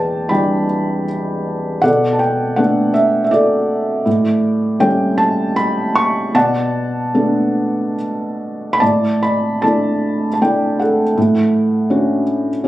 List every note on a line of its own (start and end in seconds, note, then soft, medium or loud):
0.00 1.79 E2 medium
0.00 0.66 B4 medium
0.00 0.29 D5 medium
0.00 0.31 G5 medium
0.00 0.31 A5 medium
0.29 1.05 G3 soft
0.29 1.05 D4 soft
0.29 1.05 E4 soft
0.29 1.79 D5 soft
0.29 1.79 G5 medium
0.29 1.87 B5 medium
1.82 4.02 B2 medium
1.82 2.91 A4 medium
1.82 2.91 D5 medium
1.82 2.14 F#5 medium
2.13 2.20 A5 soft
2.19 2.58 G5 medium
2.56 3.29 A3 soft
2.56 3.29 B3 soft
2.56 3.30 D4 soft
2.56 2.95 F#5 medium
2.94 3.23 E5 medium
3.24 3.31 E5 medium
3.31 4.77 F#4 soft
3.31 4.77 A4 medium
3.31 4.85 D5 medium
4.06 6.30 A2 medium
4.80 5.54 G3 medium
4.80 5.54 A3 soft
4.80 5.55 C#4 medium
4.80 5.19 G5 medium
5.18 5.54 A5 medium
5.56 5.96 B5 medium
5.95 6.36 C#6 medium
6.34 8.77 B2 medium
6.34 7.95 D5 medium
6.34 7.95 F#5 medium
6.34 7.94 A5 medium
7.14 7.95 A3 soft
7.14 7.95 B3 soft
7.14 7.96 D4 medium
8.73 8.81 B5 medium
8.80 11.13 A2 soft
8.80 9.20 D5 medium
8.80 9.23 A5 medium
9.23 9.61 D5 medium
9.23 9.64 B5 medium
9.62 10.26 A3 soft
9.62 10.26 D4 soft
9.62 10.27 E4 soft
9.62 10.31 D5 medium
9.62 10.32 A5 medium
10.34 10.41 A5 medium
10.42 11.02 A3 soft
10.42 11.02 D4 soft
10.42 11.02 E4 soft
10.42 10.78 D5 soft
10.42 10.81 G5 medium
10.79 12.23 A4 soft
10.79 12.23 F#5 medium
11.17 12.68 A2 medium
11.90 12.49 C#4 soft
11.90 12.50 D4 soft
11.90 12.50 F#4 soft
12.64 12.68 C#4 soft
12.64 12.68 D4 soft
12.64 12.68 F#4 soft